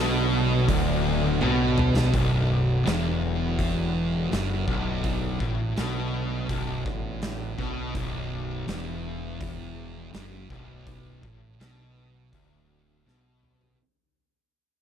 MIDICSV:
0, 0, Header, 1, 5, 480
1, 0, Start_track
1, 0, Key_signature, 2, "minor"
1, 0, Tempo, 725514
1, 1413, Time_signature, 4, 2, 24, 8
1, 4777, Tempo, 730816
1, 9766, End_track
2, 0, Start_track
2, 0, Title_t, "Tonewheel organ"
2, 0, Program_c, 0, 16
2, 0, Note_on_c, 0, 50, 68
2, 0, Note_on_c, 0, 54, 70
2, 0, Note_on_c, 0, 59, 79
2, 1389, Note_off_c, 0, 50, 0
2, 1390, Note_off_c, 0, 59, 0
2, 1391, Note_off_c, 0, 54, 0
2, 1423, Note_on_c, 0, 50, 68
2, 1424, Note_on_c, 0, 54, 66
2, 1424, Note_on_c, 0, 59, 73
2, 5233, Note_off_c, 0, 50, 0
2, 5233, Note_off_c, 0, 54, 0
2, 5233, Note_off_c, 0, 59, 0
2, 9766, End_track
3, 0, Start_track
3, 0, Title_t, "Distorted electric guitar"
3, 0, Program_c, 1, 30
3, 0, Note_on_c, 1, 47, 113
3, 447, Note_off_c, 1, 47, 0
3, 450, Note_on_c, 1, 38, 108
3, 924, Note_off_c, 1, 38, 0
3, 936, Note_on_c, 1, 47, 106
3, 1406, Note_off_c, 1, 47, 0
3, 1408, Note_on_c, 1, 35, 106
3, 1882, Note_off_c, 1, 35, 0
3, 1897, Note_on_c, 1, 40, 102
3, 2847, Note_off_c, 1, 40, 0
3, 2853, Note_on_c, 1, 42, 93
3, 3084, Note_off_c, 1, 42, 0
3, 3086, Note_on_c, 1, 35, 93
3, 3563, Note_off_c, 1, 35, 0
3, 3576, Note_on_c, 1, 45, 99
3, 3807, Note_off_c, 1, 45, 0
3, 3816, Note_on_c, 1, 47, 108
3, 4289, Note_off_c, 1, 47, 0
3, 4295, Note_on_c, 1, 35, 95
3, 4528, Note_off_c, 1, 35, 0
3, 4536, Note_on_c, 1, 45, 95
3, 5008, Note_off_c, 1, 45, 0
3, 5013, Note_on_c, 1, 47, 93
3, 5246, Note_off_c, 1, 47, 0
3, 5256, Note_on_c, 1, 35, 104
3, 5726, Note_off_c, 1, 35, 0
3, 5732, Note_on_c, 1, 40, 101
3, 6683, Note_off_c, 1, 40, 0
3, 6696, Note_on_c, 1, 42, 87
3, 6923, Note_off_c, 1, 42, 0
3, 6926, Note_on_c, 1, 35, 92
3, 7401, Note_off_c, 1, 35, 0
3, 7410, Note_on_c, 1, 45, 100
3, 7643, Note_off_c, 1, 45, 0
3, 7652, Note_on_c, 1, 47, 98
3, 8124, Note_off_c, 1, 47, 0
3, 8129, Note_on_c, 1, 38, 95
3, 8603, Note_off_c, 1, 38, 0
3, 8613, Note_on_c, 1, 47, 89
3, 9086, Note_off_c, 1, 47, 0
3, 9766, End_track
4, 0, Start_track
4, 0, Title_t, "Fingered electric bass"
4, 0, Program_c, 2, 33
4, 0, Note_on_c, 2, 35, 91
4, 430, Note_off_c, 2, 35, 0
4, 458, Note_on_c, 2, 26, 90
4, 908, Note_off_c, 2, 26, 0
4, 941, Note_on_c, 2, 35, 98
4, 1390, Note_off_c, 2, 35, 0
4, 1413, Note_on_c, 2, 23, 93
4, 1865, Note_off_c, 2, 23, 0
4, 1899, Note_on_c, 2, 28, 95
4, 2829, Note_off_c, 2, 28, 0
4, 2864, Note_on_c, 2, 30, 93
4, 3081, Note_off_c, 2, 30, 0
4, 3098, Note_on_c, 2, 23, 91
4, 3549, Note_off_c, 2, 23, 0
4, 3577, Note_on_c, 2, 33, 93
4, 3799, Note_off_c, 2, 33, 0
4, 3820, Note_on_c, 2, 35, 90
4, 4271, Note_off_c, 2, 35, 0
4, 4297, Note_on_c, 2, 23, 87
4, 4520, Note_off_c, 2, 23, 0
4, 4539, Note_on_c, 2, 33, 91
4, 4991, Note_off_c, 2, 33, 0
4, 5018, Note_on_c, 2, 35, 90
4, 5239, Note_off_c, 2, 35, 0
4, 5258, Note_on_c, 2, 23, 92
4, 5708, Note_off_c, 2, 23, 0
4, 5738, Note_on_c, 2, 28, 95
4, 6667, Note_off_c, 2, 28, 0
4, 6694, Note_on_c, 2, 30, 91
4, 6915, Note_off_c, 2, 30, 0
4, 6937, Note_on_c, 2, 23, 93
4, 7387, Note_off_c, 2, 23, 0
4, 7414, Note_on_c, 2, 33, 87
4, 7635, Note_off_c, 2, 33, 0
4, 7653, Note_on_c, 2, 35, 90
4, 8106, Note_off_c, 2, 35, 0
4, 8614, Note_on_c, 2, 35, 88
4, 9067, Note_off_c, 2, 35, 0
4, 9766, End_track
5, 0, Start_track
5, 0, Title_t, "Drums"
5, 453, Note_on_c, 9, 46, 69
5, 454, Note_on_c, 9, 36, 108
5, 519, Note_off_c, 9, 46, 0
5, 520, Note_off_c, 9, 36, 0
5, 934, Note_on_c, 9, 48, 69
5, 1000, Note_off_c, 9, 48, 0
5, 1175, Note_on_c, 9, 45, 99
5, 1242, Note_off_c, 9, 45, 0
5, 1301, Note_on_c, 9, 38, 99
5, 1367, Note_off_c, 9, 38, 0
5, 1413, Note_on_c, 9, 36, 109
5, 1415, Note_on_c, 9, 46, 57
5, 1480, Note_off_c, 9, 36, 0
5, 1481, Note_off_c, 9, 46, 0
5, 1895, Note_on_c, 9, 46, 54
5, 1902, Note_on_c, 9, 38, 109
5, 1961, Note_off_c, 9, 46, 0
5, 1968, Note_off_c, 9, 38, 0
5, 2374, Note_on_c, 9, 36, 104
5, 2378, Note_on_c, 9, 46, 53
5, 2440, Note_off_c, 9, 36, 0
5, 2444, Note_off_c, 9, 46, 0
5, 2859, Note_on_c, 9, 46, 49
5, 2866, Note_on_c, 9, 38, 111
5, 2925, Note_off_c, 9, 46, 0
5, 2932, Note_off_c, 9, 38, 0
5, 3094, Note_on_c, 9, 36, 104
5, 3160, Note_off_c, 9, 36, 0
5, 3334, Note_on_c, 9, 36, 114
5, 3334, Note_on_c, 9, 46, 53
5, 3400, Note_off_c, 9, 36, 0
5, 3401, Note_off_c, 9, 46, 0
5, 3574, Note_on_c, 9, 36, 101
5, 3641, Note_off_c, 9, 36, 0
5, 3815, Note_on_c, 9, 46, 53
5, 3821, Note_on_c, 9, 38, 115
5, 3881, Note_off_c, 9, 46, 0
5, 3888, Note_off_c, 9, 38, 0
5, 4295, Note_on_c, 9, 46, 57
5, 4296, Note_on_c, 9, 36, 103
5, 4361, Note_off_c, 9, 46, 0
5, 4363, Note_off_c, 9, 36, 0
5, 4538, Note_on_c, 9, 36, 99
5, 4604, Note_off_c, 9, 36, 0
5, 4775, Note_on_c, 9, 46, 56
5, 4782, Note_on_c, 9, 38, 114
5, 4841, Note_off_c, 9, 46, 0
5, 4847, Note_off_c, 9, 38, 0
5, 5016, Note_on_c, 9, 36, 99
5, 5082, Note_off_c, 9, 36, 0
5, 5256, Note_on_c, 9, 36, 109
5, 5257, Note_on_c, 9, 46, 60
5, 5322, Note_off_c, 9, 36, 0
5, 5323, Note_off_c, 9, 46, 0
5, 5735, Note_on_c, 9, 46, 57
5, 5742, Note_on_c, 9, 38, 105
5, 5801, Note_off_c, 9, 46, 0
5, 5807, Note_off_c, 9, 38, 0
5, 6213, Note_on_c, 9, 36, 106
5, 6213, Note_on_c, 9, 46, 54
5, 6279, Note_off_c, 9, 36, 0
5, 6279, Note_off_c, 9, 46, 0
5, 6692, Note_on_c, 9, 46, 51
5, 6699, Note_on_c, 9, 38, 109
5, 6758, Note_off_c, 9, 46, 0
5, 6764, Note_off_c, 9, 38, 0
5, 6933, Note_on_c, 9, 36, 98
5, 6998, Note_off_c, 9, 36, 0
5, 7172, Note_on_c, 9, 36, 105
5, 7173, Note_on_c, 9, 46, 54
5, 7238, Note_off_c, 9, 36, 0
5, 7238, Note_off_c, 9, 46, 0
5, 7412, Note_on_c, 9, 36, 103
5, 7478, Note_off_c, 9, 36, 0
5, 7655, Note_on_c, 9, 46, 50
5, 7662, Note_on_c, 9, 38, 112
5, 7721, Note_off_c, 9, 46, 0
5, 7727, Note_off_c, 9, 38, 0
5, 8133, Note_on_c, 9, 36, 107
5, 8134, Note_on_c, 9, 46, 56
5, 8198, Note_off_c, 9, 36, 0
5, 8200, Note_off_c, 9, 46, 0
5, 8623, Note_on_c, 9, 38, 59
5, 8689, Note_off_c, 9, 38, 0
5, 8855, Note_on_c, 9, 45, 78
5, 8921, Note_off_c, 9, 45, 0
5, 8975, Note_on_c, 9, 43, 78
5, 9041, Note_off_c, 9, 43, 0
5, 9766, End_track
0, 0, End_of_file